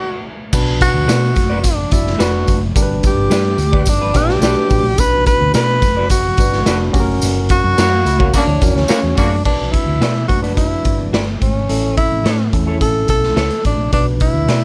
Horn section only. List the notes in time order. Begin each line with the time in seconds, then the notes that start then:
7.77 C#3 A#3 F#4
8.34 C#3 A#3 F#4
8.90 C#3 A#3 F#4
9.17 C#3 A#3 F#4